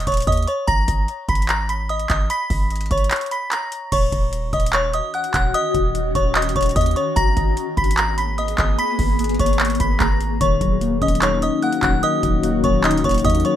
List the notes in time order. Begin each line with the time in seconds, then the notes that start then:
0.00 closed hi-hat
0.07 D#1 C#5 C#6, kick, closed hi-hat
0.12 closed hi-hat
0.14 closed hi-hat
0.17 closed hi-hat
0.20 closed hi-hat
0.22 closed hi-hat
0.27 D#2 D#5 D#6, kick, closed hi-hat
0.32 closed hi-hat
0.37 closed hi-hat
0.42 closed hi-hat
0.47 C#5 C#6, closed hi-hat
0.67 G#1 A#5 A#6, kick, closed hi-hat
0.88 G#1, kick, closed hi-hat
1.08 closed hi-hat
1.29 G#1 B5 B6, kick, closed hi-hat
1.35 closed hi-hat
1.42 closed hi-hat
1.49 A#5 A#6, clap, closed hi-hat
1.69 B5 B6, closed hi-hat
1.89 D#5 D#6, closed hi-hat
2.00 closed hi-hat
2.10 G#1 D#5 D#6, kick, clap, closed hi-hat
2.30 B5 B6, closed hi-hat
2.50 G#1, kick, open hi-hat
2.71 closed hi-hat
2.76 closed hi-hat
2.81 closed hi-hat
2.86 closed hi-hat
2.91 G#1 C#5 C#6, kick, closed hi-hat
2.98 closed hi-hat
3.04 closed hi-hat
3.11 clap, closed hi-hat
3.16 closed hi-hat
3.21 closed hi-hat
3.26 closed hi-hat
3.31 B5 B6, closed hi-hat
3.51 A#5 A#6, clap, closed hi-hat
3.72 closed hi-hat
3.92 D#1 D#3 C#4 F#4 C#5 C#6, kick, closed hi-hat, crash
4.12 D#1, kick, closed hi-hat
4.33 closed hi-hat
4.53 D#1 D#5 D#6, kick, closed hi-hat
4.60 closed hi-hat
4.66 closed hi-hat
4.73 C#5 C#6, clap, closed hi-hat
4.94 D#5 D#6, closed hi-hat
5.14 F#5 F#6, closed hi-hat
5.24 closed hi-hat
5.34 D#1 F#5 F#6, kick, clap, closed hi-hat
5.54 D#5 D#6, closed hi-hat
5.75 D#1, kick, closed hi-hat
5.95 closed hi-hat
6.15 D#1 C#5 C#6, kick, closed hi-hat
6.35 D#5 D#6, clap, closed hi-hat
6.42 closed hi-hat
6.49 closed hi-hat
6.56 D#1 C#5 C#6, kick, closed hi-hat
6.61 closed hi-hat
6.62 closed hi-hat
6.66 closed hi-hat
6.69 closed hi-hat
6.71 closed hi-hat
6.76 D#2 D#5 D#6, kick, closed hi-hat
6.81 closed hi-hat
6.86 closed hi-hat
6.91 closed hi-hat
6.96 C#5 C#6, closed hi-hat
7.16 G#1 A#3 B3 G#4 A#5 A#6, kick, closed hi-hat
7.37 G#1, kick, closed hi-hat
7.57 closed hi-hat
7.77 G#1 B5 B6, kick, closed hi-hat
7.84 closed hi-hat
7.91 closed hi-hat
7.97 A#5 A#6, clap, closed hi-hat
8.18 B5 B6, closed hi-hat
8.38 D#5 D#6, closed hi-hat
8.48 closed hi-hat
8.58 G#1 D#5 D#6, kick, clap, closed hi-hat
8.79 B5 B6, closed hi-hat
8.99 G#1, kick, open hi-hat
9.19 closed hi-hat
9.24 closed hi-hat
9.29 closed hi-hat
9.34 closed hi-hat
9.39 G#1 C#5 C#6, kick, closed hi-hat
9.46 closed hi-hat
9.53 closed hi-hat
9.60 clap, closed hi-hat
9.65 closed hi-hat
9.70 closed hi-hat
9.75 closed hi-hat
9.80 G#1 B5 B6, kick, closed hi-hat
10.00 G#1 A#5 A#6, kick, clap, closed hi-hat
10.21 closed hi-hat
10.41 D#1 D#3 C#4 F#4 C#5 C#6, kick, closed hi-hat
10.61 D#1 F#3, kick, closed hi-hat
10.81 A#3, closed hi-hat
11.02 D#1 C#4 D#5 D#6, kick, closed hi-hat
11.08 closed hi-hat
11.15 closed hi-hat
11.22 D#4 C#5 C#6, clap, closed hi-hat
11.42 D#5 D#6, closed hi-hat
11.62 A#3 F#5 F#6, closed hi-hat
11.73 closed hi-hat
11.82 D#1 F#3 F#5 F#6, kick, clap, closed hi-hat
12.03 D#3 D#5 D#6, closed hi-hat
12.23 D#1 F#3, kick, closed hi-hat
12.43 A#3, closed hi-hat
12.64 D#1 C#4 C#5 C#6, kick, closed hi-hat
12.84 D#4 D#5 D#6, clap, closed hi-hat
12.91 closed hi-hat
12.98 closed hi-hat
13.04 D#1 C#5 C#6, kick, closed hi-hat
13.09 closed hi-hat
13.11 closed hi-hat
13.14 closed hi-hat
13.18 closed hi-hat
13.19 closed hi-hat
13.24 D#2 A#3 D#5 D#6, kick, closed hi-hat
13.30 closed hi-hat
13.35 closed hi-hat
13.40 closed hi-hat
13.45 F#3 C#5 C#6, closed hi-hat